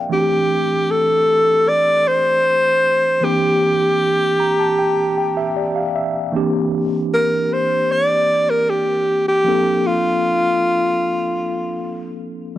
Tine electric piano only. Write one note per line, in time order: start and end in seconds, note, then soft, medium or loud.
0.00 0.13 D5 medium
0.00 0.13 E5 medium
0.00 0.12 F5 medium
0.00 0.13 G5 medium
0.09 3.18 E3 medium
0.09 3.18 A3 medium
0.09 3.19 C4 medium
0.09 3.20 D4 medium
0.14 0.19 F#4 medium
0.20 3.23 G4 medium
3.21 6.30 E3 medium
3.21 6.30 A#3 medium
3.21 6.31 C4 medium
3.21 6.31 D4 medium
3.25 6.32 G4 medium
4.40 4.58 A#5 medium
4.59 4.77 A5 medium
4.79 5.15 G5 medium
5.18 5.36 G5 medium
5.37 5.55 E5 medium
5.56 5.75 D5 medium
5.76 5.94 F5 medium
5.96 6.32 E5 medium
6.32 9.41 E3 medium
6.32 9.42 A#3 medium
6.32 9.42 C4 medium
6.32 9.43 D4 medium
6.36 9.43 G4 medium
9.44 12.53 F3 medium
9.44 12.53 A#3 medium
9.44 12.54 C4 medium
9.44 12.55 D4 medium
9.49 12.55 A4 medium